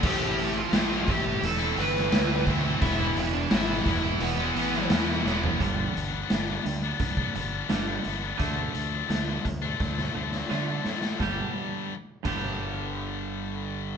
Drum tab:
CC |x---------------|----------------|----------------|----------------|
HH |--o-o-o-o-o-o-o-|o-o-o-o-o-o-o---|x-x-x-x-x-x-x-x-|x-x-x-x---------|
SD |----o------oo---|----o------oo-o-|----o-------o---|----o---oo-oo-oo|
FT |----------------|---------------o|----------------|----------------|
BD |o-----o-------o-|o-----o---------|o-------oo------|o-----o-o-------|

CC |------x---------|
HH |----------------|
SD |o---------------|
FT |----------------|
BD |o-----o---------|